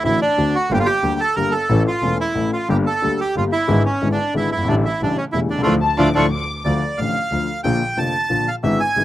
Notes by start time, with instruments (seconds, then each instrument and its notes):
0.03 grand piano A1 A2 D3 A3 C4 F#4, double bass A1, bandoneon E4
0.22 bandoneon D4
0.38 grand piano D2 D3 A3 C4 F#4, double bass D2
0.55 bandoneon F#4
0.70 double bass G1, grand piano G1 G2 D3 G3 A#3 G4, bandoneon F4 G4
0.79 bandoneon F4
0.86 bandoneon G4
1.03 grand piano D2 D3 G3 A#3 G4, double bass D2
1.20 bandoneon A4
1.36 grand piano G1 G2 D3 G3 A#3 G4, double bass G1, bandoneon A#4
1.51 bandoneon A4
1.69 grand piano A1 A2 E3 A3 C#4 A4, double bass A1
1.87 bandoneon F4
2.02 grand piano E1 E2 E3 A3 C#4 A4, double bass E1
2.20 bandoneon E4
2.35 grand piano A1 A2 E3 A3 C#4 A4, double bass A1
2.53 bandoneon F4
2.69 grand piano G1 G2 D3 G3 A#3 G4, double bass G1, bandoneon G4
2.86 bandoneon A4
3.02 grand piano D2 D3 G3 A#3 G4, double bass D2
3.21 bandoneon G4
3.35 grand piano G1 G2 D3 G3 A#3 G4, double bass G1, bandoneon F4
3.52 bandoneon E4
3.67 grand piano G#1 G#2 D3 G#3 B3 E4, double bass G#1
3.86 bandoneon C#4
4.02 grand piano G#1 G#2 D3 G#3 B3 E4, double bass G#1
4.12 bandoneon D4
4.34 grand piano G#1 G#2 D3 G#3 B3 E4, double bass G#1, bandoneon E4
4.52 grand piano F#1, double bass G1, bandoneon E4
4.58 grand piano G1
4.64 grand piano G#1, bandoneon D4
4.68 double bass A1, grand piano A1 A2 D3 G3 A3 E4
4.85 bandoneon E4
5.01 double bass A1, grand piano A1 A2 C#3 G3 A3 E4, bandoneon D4
5.17 bandoneon C#4
5.32 grand piano E1 E2 C#3 G3 A3 E4, double bass E1, bandoneon E4
5.50 grand piano B1, double bass C2, bandoneon D4
5.58 grand piano C2 C#2
5.62 grand piano A2 D3, bandoneon A3 D4 F4
5.66 double bass D2, grand piano F3
5.82 violin section A5
5.98 double bass D2, grand piano A2 D3 F3, bandoneon A3 D4 F4, violin section D6
6.15 double bass D2, grand piano A2 D3 F3, bandoneon A3 D4 F4, violin section C#6
6.34 violin section D6
6.64 double bass D2, grand piano D2 D3 F3 A3 F4, bandoneon D5
6.98 double bass A1, grand piano A1 A2 D3 F3 A3 F4, bandoneon F5
7.32 double bass D2, grand piano D2 D3 F3 A3 F4
7.64 grand piano A#1 A#2 D3 F3 A#3 F4, double bass A#1, bandoneon G5
7.97 grand piano F1 F2 D3 F3 A#3 F4, double bass F1, bandoneon A5
8.29 grand piano A#1 A#2 D3 F3 A#3 F4, double bass A#1
8.48 bandoneon F5
8.63 grand piano G#1 G#2 D3 G#3 B3 E4, double bass G#1, bandoneon E5
8.80 bandoneon G#5
8.96 grand piano G#1 G#2 D3 G#3 B3 E4, double bass G#1